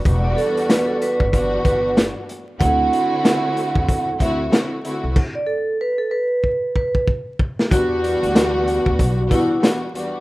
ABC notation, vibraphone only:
X:1
M:4/4
L:1/16
Q:"Swing 16ths" 1/4=94
K:Em
V:1 name="Vibraphone"
z d A2 B A B4 B2 z4 | f8- f2 e2 z4 | z d A2 B A B4 B2 z4 | F8- F2 E2 z4 |]